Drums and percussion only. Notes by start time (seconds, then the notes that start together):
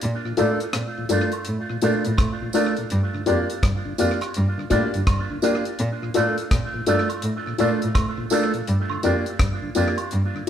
0.01 closed hi-hat
0.37 closed hi-hat, tambourine
0.60 closed hi-hat
0.73 cross-stick, closed hi-hat
1.09 closed hi-hat, tambourine
1.32 closed hi-hat, high woodblock
1.45 closed hi-hat
1.81 closed hi-hat, tambourine
2.05 closed hi-hat
2.18 kick, cross-stick, closed hi-hat, high woodblock
2.53 closed hi-hat, tambourine
2.77 closed hi-hat
2.90 closed hi-hat
3.26 closed hi-hat, tambourine
3.50 closed hi-hat
3.63 kick, cross-stick, closed hi-hat
3.98 closed hi-hat, tambourine
4.21 cross-stick, closed hi-hat, high woodblock
4.34 closed hi-hat
4.70 kick, closed hi-hat, tambourine
4.94 closed hi-hat
5.07 kick, cross-stick, closed hi-hat, high woodblock
5.42 closed hi-hat, tambourine
5.65 closed hi-hat
5.79 closed hi-hat
6.14 closed hi-hat, tambourine
6.38 closed hi-hat
6.51 kick, cross-stick, closed hi-hat
6.87 closed hi-hat, tambourine
7.09 closed hi-hat, high woodblock
7.22 closed hi-hat
7.58 closed hi-hat, tambourine
7.82 closed hi-hat
7.95 kick, cross-stick, closed hi-hat, high woodblock
8.30 closed hi-hat, tambourine
8.54 closed hi-hat
8.67 closed hi-hat
8.90 high woodblock
9.03 closed hi-hat, tambourine
9.26 closed hi-hat
9.39 kick, cross-stick, closed hi-hat
9.75 closed hi-hat, tambourine
9.97 closed hi-hat, high woodblock
10.11 closed hi-hat